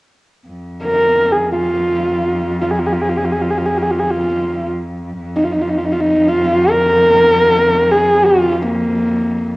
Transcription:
0.48 F2
0.84 A#4
1.32 G#4
1.52 F4
2.61 F4
2.71 G#4
2.79 F4
2.87 G#4
2.93 F4
3.02 G#4
3.09 F4
3.17 G#4
3.25 F4
3.32 G#4
3.42 F4
3.50 G#4
3.58 F4
3.66 G#4
3.78 F4
3.83 G#4
3.91 F4
4.00 G#4
4.10 F4
5.20 F2
5.36 D#4
5.44 F4
5.52 D#4
5.62 F4
5.69 D#4
5.78 F4
5.85 D#4
5.92 F4
6.01 D#4
6.28 F4
6.70 A#4
7.91 G#4
8.25 F4
8.63 A#3

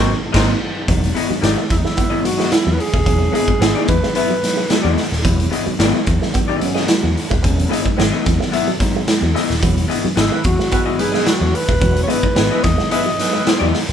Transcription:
Already playing: G#1 F#3 A#3 C4 F#4 A#4 D#5
0.32 G#1 F#3 A#3 C4 D#4 F#4 A#4 C5 D#5, kick, snare, crash
0.87 E1 E3 F#3 G#3 B3 D#4, kick, closed hi-hat
1.04 closed hi-hat
1.15 B3 E4 G#4 D#5, muted clean electric guitar stroke, closed hi-hat
1.29 F#3 G#3 B3 D#4, muted picked electric bass stroke
1.41 G#1 B3 D#4 E4 G#4 D#5, snare, closed hi-hat
1.57 G#3
1.69 E2 F#3 G#3 B3 D#4 E4, muted clean electric guitar stroke, kick, closed hi-hat
1.78 D#4
1.84 G#3 E4, snare
1.97 B3, kick, closed hi-hat
2.10 B3 E4 G#4 D#5
2.24 F#3 G#3 B3 D#4 F#4, muted clean electric guitar stroke, closed hi-hat
2.37 G#3 B3 E4 G#4 D#5, snare
2.51 F#3 G#3 B3 D#4 E4, snare, closed hi-hat
2.67 E2 F#3
2.73 B4
2.79 B3 G#4, muted clean electric guitar stroke, open hi-hat
2.93 D#1 G#3, kick
3.06 E1 E3 F#3 G#3 B3 D#4, kick, closed hi-hat
3.21 muted clean electric guitar stroke
3.32 G#3 B3 E4 G#4 D#5, closed hi-hat
3.48 F#3 G#3 B3 D#4, muted picked electric bass stroke, kick
3.60 G#1 B3 E4 G#4 D#5, snare, closed hi-hat
3.75 B3 E4 G#4 D#5
3.88 E2 F#3 G#3 B3 D#4 B4, muted clean electric guitar stroke, kick, closed hi-hat
4.03 G#3, snare
4.15 B3 E4 G#4 B4 E5, closed hi-hat
4.30 F#3
4.43 F#3 G#3 B3 D#4, muted clean electric guitar stroke, snare, closed hi-hat
4.57 G#3
4.69 F#3 G#3 B3 E4 F#4 G#4 D#5, muted clean electric guitar stroke, snare, closed hi-hat
4.83 E2 F#3 B3 E4 G#4 D#5
4.97 G#3 B3 D#4, snare, open hi-hat
5.12 D#1, snare
5.24 E1 E3 F#3 G#3 B3 E4, kick, closed hi-hat
5.40 closed hi-hat
5.51 B3 D#4 E4 G#4 D#5, muted clean electric guitar stroke, closed hi-hat
5.66 F#3 G#3 B3 D#4, muted picked electric bass stroke
5.79 G#1 B3 E4 G#4 D#5, snare, closed hi-hat
5.94 G#3
6.07 E2 F#3 G#3 B3 D#4, muted clean electric guitar stroke, kick, closed hi-hat
6.22 G#3, snare
6.34 B3, kick, closed hi-hat
6.48 B3 E4 G#4 D#5
6.61 F#3 G#3 B3 C#4, muted clean electric guitar stroke, closed hi-hat
6.74 G#3 B3 E4 G#4 D#5, snare
6.88 F#3 G#3 B3 F#4, snare, closed hi-hat
7.03 E2 F#3
7.16 B3 D#4, muted clean electric guitar stroke, open hi-hat
7.30 D#1 G#3, kick
7.43 E1 E3 F#3 G#3 B3 C#4, kick, closed hi-hat
7.58 muted clean electric guitar stroke, closed hi-hat
7.69 G#3 B3 E4 G#4 D#5, closed hi-hat
7.85 F#3 G#3 B3 D#4, muted picked electric bass stroke, kick
7.97 G#1 B3 E4 G#4 D#5, snare, closed hi-hat
8.12 B3 E4 G#4 D#5
8.26 E2 F#3 G#3 B3 E4, muted clean electric guitar stroke, kick, snare, closed hi-hat
8.40 G#3, snare
8.52 B3 E4 G#4 E5, closed hi-hat
8.68 F#3
8.80 F#3 G#3 B3 D#4, muted clean electric guitar stroke, kick, snare, closed hi-hat
8.96 G#3
9.07 F#3 G#3 B3 E4, muted clean electric guitar stroke, snare, closed hi-hat
9.22 E2 F#3
9.34 G#3 B3 E4 G#4 D#5, snare, open hi-hat
9.50 D#1, snare
9.62 E1 E3 F#3 G#3 B3 E4, kick, closed hi-hat
9.78 closed hi-hat
9.88 B3 D#4 E4 G#4 D#5, muted clean electric guitar stroke, closed hi-hat
10.04 F#3 G#3 B3 D#4, muted picked electric bass stroke
10.16 G#1 B3 E4 G#4 D#5, snare, closed hi-hat
10.32 G#3 E4 B4
10.44 E2 F#3 G#3 B3 E4 F#4, muted clean electric guitar stroke, kick, closed hi-hat
10.59 G#3, snare
10.71 G#3 B3 E4 B4, kick, closed hi-hat
10.85 B3 E4 G#4 D#5
10.98 F#3 G#3 B3 D#4 E4 G#4 B4, muted clean electric guitar stroke, closed hi-hat
11.12 G#3 B3 E4 G#4 B4 D#5, snare
11.26 F#3 G#3 B3 F#4, snare, closed hi-hat
11.41 E2 F#3
11.54 B3 D#4 B4, muted clean electric guitar stroke, open hi-hat
11.68 D#1 G#3, kick
11.80 E1 E3 F#3 G#3 B3 F#4, kick, closed hi-hat
11.95 muted clean electric guitar stroke, closed hi-hat
12.03 C#5
12.07 G#3 B3 D#4 E4 G#4 B4 D#5, closed hi-hat
12.23 F#3 G#3 B3 D#4, muted picked electric bass stroke, kick
12.36 G#1 B3 E4 G#4 D#5, snare, closed hi-hat
12.51 G#3 B3 E4 G#4 B4 D#5
12.63 E2 F#3 G#3 B3 D#4 D#5, muted clean electric guitar stroke, kick, snare, closed hi-hat
12.78 G#3, snare
12.91 G#3 B3 E4 G#4 B4 D#5 E5, closed hi-hat
13.06 F#3
13.19 F#3 G#3 B3 D#4 E4 B4, muted clean electric guitar stroke, snare, closed hi-hat
13.33 G#3 E4 B4
13.45 F#3 G#3 B3 D#4 E4 G#4 D#5, muted clean electric guitar stroke, snare, closed hi-hat
13.59 E2 F#3 B3 E4 G#4 D#5
13.73 G#3 B3 E4, snare, open hi-hat
13.89 D#1, snare

